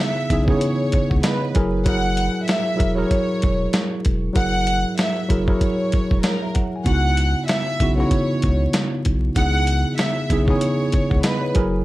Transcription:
0.00 0.30 C#3 medium
0.00 0.31 B3 medium
0.00 0.31 D#4 medium
0.00 0.32 E4 medium
0.00 0.33 G#4 medium
0.00 0.45 E5 medium
0.30 0.55 B1 loud
0.30 0.44 C#3 medium
0.30 0.44 B3 medium
0.30 0.44 D#4 medium
0.30 0.44 E4 medium
0.30 0.45 G#4 loud
0.30 kick medium
0.30 closed hi-hat medium
0.48 1.39 C#3 medium
0.48 1.40 B3 medium
0.48 1.40 D#4 medium
0.48 1.40 E4 medium
0.48 1.41 G#4 loud
0.48 1.20 C#5 medium
0.48 kick loud
0.61 closed hi-hat medium
0.92 kick medium
0.92 closed hi-hat medium
1.10 1.21 C#2 medium
1.10 1.22 F#5 medium
1.10 kick medium
1.23 1.52 B4 medium
1.23 1.52 D#5 medium
1.23 snare loud
1.23 closed hi-hat loud
1.40 1.71 C#5 medium
1.54 2.29 F#1 loud
1.54 1.81 F#3 medium
1.54 1.81 E4 medium
1.54 1.81 G#4 medium
1.54 1.82 A#4 loud
1.54 1.84 G#5 medium
1.54 kick medium
1.54 closed hi-hat medium
1.85 2.56 F#3 medium
1.85 2.56 E4 medium
1.85 2.56 G#4 medium
1.85 2.57 A#4 medium
1.85 2.45 F#5 loud
1.85 kick loud
1.85 closed hi-hat loud
2.17 closed hi-hat medium
2.46 2.94 E5 medium
2.46 snare loud
2.46 closed hi-hat medium
2.76 2.91 F#3 medium
2.76 2.92 E4 medium
2.76 2.92 G#4 medium
2.76 2.93 A#4 loud
2.76 kick medium
2.80 3.05 E1 medium
2.80 closed hi-hat medium
2.96 3.88 F#3 medium
2.96 3.89 E4 medium
2.96 3.89 G#4 medium
2.96 3.90 A#4 loud
2.96 3.88 C#5 medium
3.11 kick medium
3.11 closed hi-hat medium
3.42 3.68 E1 medium
3.42 kick medium
3.42 closed hi-hat medium
3.73 snare loud
3.73 closed hi-hat loud
4.05 4.30 E1 loud
4.05 kick medium
4.05 closed hi-hat medium
4.33 4.85 F#1 loud
4.33 5.05 F#3 medium
4.33 5.05 E4 medium
4.33 5.05 G#4 medium
4.33 5.06 A#4 medium
4.33 4.95 F#5 loud
4.33 kick loud
4.33 closed hi-hat medium
4.67 closed hi-hat medium
4.98 5.45 E5 medium
4.98 snare loud
4.98 closed hi-hat medium
5.28 5.55 F#1 medium
5.28 5.43 F#3 medium
5.28 5.43 E4 medium
5.28 5.43 G#4 medium
5.28 5.44 A#4 loud
5.28 kick medium
5.28 closed hi-hat medium
5.47 6.39 F#3 medium
5.47 6.40 E4 medium
5.47 6.40 G#4 medium
5.47 6.40 A#4 medium
5.47 6.19 C#5 medium
5.47 kick loud
5.61 kick medium
5.61 closed hi-hat medium
5.92 kick medium
5.92 closed hi-hat medium
6.11 6.21 E1 medium
6.11 kick medium
6.23 6.51 A#4 medium
6.23 6.41 C#5 medium
6.23 snare loud
6.23 closed hi-hat loud
6.42 6.54 E5 medium
6.54 6.72 F#5 medium
6.54 kick medium
6.54 closed hi-hat medium
6.76 7.04 G#5 medium
6.84 7.35 C#2 loud
6.84 7.55 C#3 medium
6.84 7.55 B3 medium
6.84 7.56 D#4 medium
6.84 7.56 E4 medium
6.84 7.56 F#4 medium
6.84 7.45 F#5 loud
6.84 kick loud
6.84 closed hi-hat medium
7.17 closed hi-hat medium
7.48 7.95 E5 medium
7.48 snare loud
7.48 closed hi-hat medium
7.80 8.05 B1 medium
7.80 7.94 C#3 medium
7.80 7.94 B3 medium
7.80 7.94 D#4 medium
7.80 7.95 E4 medium
7.80 7.95 F#4 medium
7.80 kick medium
7.80 closed hi-hat medium
7.97 8.89 C#3 medium
7.97 8.89 B3 medium
7.97 8.90 D#4 medium
7.97 8.90 E4 medium
7.97 8.90 F#4 medium
7.97 8.88 C#5 medium
8.11 kick medium
8.11 closed hi-hat medium
8.42 8.68 C#2 medium
8.42 kick medium
8.42 closed hi-hat medium
8.73 snare loud
8.73 closed hi-hat loud
9.05 9.30 B1 medium
9.05 kick medium
9.05 closed hi-hat medium
9.35 9.85 C#2 loud
9.35 10.06 C#3 medium
9.35 10.06 B3 medium
9.35 10.06 D#4 medium
9.35 10.07 E4 medium
9.35 10.07 G#4 medium
9.35 9.94 F#5 loud
9.35 kick loud
9.35 closed hi-hat loud
9.67 closed hi-hat medium
9.98 10.45 E5 medium
9.98 snare loud
9.98 closed hi-hat medium
10.30 10.55 B1 loud
10.30 10.44 C#3 medium
10.30 10.44 B3 medium
10.30 10.44 D#4 medium
10.30 10.44 E4 medium
10.30 10.45 G#4 loud
10.30 kick medium
10.30 closed hi-hat medium
10.48 11.39 C#3 medium
10.48 11.40 B3 medium
10.48 11.40 D#4 medium
10.48 11.40 E4 medium
10.48 11.41 G#4 loud
10.48 11.19 C#5 medium
10.48 kick loud
10.61 closed hi-hat medium
10.92 kick medium
10.92 closed hi-hat medium
11.10 11.21 C#2 medium
11.10 11.22 F#5 medium
11.10 kick medium
11.23 11.52 B4 medium
11.23 11.41 D#5 medium
11.23 snare loud
11.23 closed hi-hat loud
11.41 11.71 C#5 medium
11.54 11.85 F#1 loud
11.54 11.81 F#3 medium
11.54 11.81 E4 medium
11.54 11.81 G#4 medium
11.54 11.82 A#4 loud
11.54 11.84 G#5 medium
11.54 kick medium
11.54 closed hi-hat medium

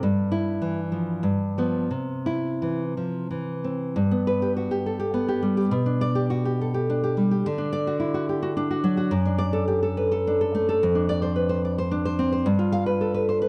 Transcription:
0.03 1.20 G2 medium
0.32 0.79 E4 medium
0.62 1.24 E3 medium
0.92 1.24 F3 soft
1.23 1.88 G2 medium
1.58 1.88 F3 soft
1.58 1.88 B3 medium
1.91 3.94 C3 soft
2.26 2.83 E4 medium
2.62 2.97 E3 soft
2.97 3.30 F3 soft
3.31 3.97 E3 soft
3.64 3.97 C4 soft
3.96 5.68 G2 medium
4.11 5.00 B3 soft
4.27 4.51 B4 medium
4.42 4.70 G4 medium
4.57 4.86 F#4 soft
4.71 4.98 G4 soft
4.86 5.73 A4 soft
5.00 5.27 G4 medium
5.14 5.72 B3 medium
5.29 5.56 G4 medium
5.42 5.72 G3 medium
5.57 5.72 G4 medium
5.71 7.42 B2 medium
5.86 6.75 D4 soft
6.01 6.25 D5 medium
6.15 6.44 G4 medium
6.30 6.61 F#4 soft
6.45 6.73 G4 soft
6.61 7.48 A4 soft
6.74 7.02 G4 medium
6.90 7.47 D4 medium
7.04 7.30 G4 medium
7.17 7.46 G3 medium
7.31 7.46 G4 medium
7.46 9.10 D3 medium
7.58 8.42 D4 soft
7.73 7.97 D5 medium
7.87 8.13 F#4 medium
8.00 8.85 E4 soft
8.14 8.29 F#4 medium
8.29 8.70 G4 soft
8.43 8.56 F#4 medium
8.57 9.13 D4 medium
8.71 8.96 F#4 medium
8.84 9.13 F#3 medium
8.97 9.13 F#4 medium
9.11 10.78 F#2 medium
9.25 10.12 D4 medium
9.38 9.63 D5 medium
9.53 9.67 A4 medium
9.68 9.82 G4 medium
9.83 10.10 A4 medium
9.97 10.82 B4 soft
10.12 10.40 A4 medium
10.27 10.83 D4 medium
10.41 10.68 A4 medium
10.55 10.83 A3 medium
10.69 10.83 A4 medium
10.83 12.43 F2 medium
10.95 11.78 D4 medium
11.09 11.21 D5 medium
11.22 11.48 C5 medium
11.36 12.19 B4 soft
11.49 11.64 C5 medium
11.65 11.78 D5 soft
11.78 12.04 C5 medium
11.91 12.46 D4 medium
12.05 12.31 C5 medium
12.19 12.47 C4 medium
12.32 12.47 C5 medium
12.46 13.49 G2 medium
12.59 13.42 F4 medium
12.72 12.86 F5 medium
12.86 13.13 B4 medium
13.01 13.49 A4 soft
13.14 13.28 B4 medium
13.29 13.41 C5 soft
13.42 13.49 B4 medium

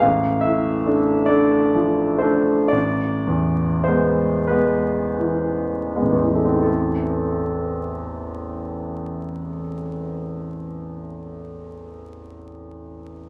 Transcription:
0.00 2.70 A1 soft
0.00 0.43 F5 medium
0.41 1.13 A2 soft
0.41 1.28 E5 soft
0.86 1.26 A3 soft
0.86 1.26 D4 soft
1.26 1.70 A3 soft
1.26 1.71 D4 soft
1.26 2.21 D5 medium
1.74 2.53 F3 soft
2.18 2.69 A3 soft
2.18 2.72 C5 soft
2.23 2.70 D4 soft
2.68 3.84 D5 medium
2.72 6.00 A1 soft
3.27 4.24 E2 soft
3.84 4.47 G#3 soft
3.84 4.49 C5 soft
3.88 4.47 B3 soft
4.47 5.15 G#3 soft
4.47 5.15 B3 soft
4.47 5.96 B4 soft
5.19 6.21 E3 soft
5.96 6.62 G#3 soft
5.96 6.62 B3 soft
6.02 9.28 A1 soft
6.12 9.38 E2 soft
6.23 9.49 E3 soft
6.34 9.60 A3 soft
6.45 9.71 C4 soft
6.56 9.82 E4 soft
6.63 9.89 A4 soft

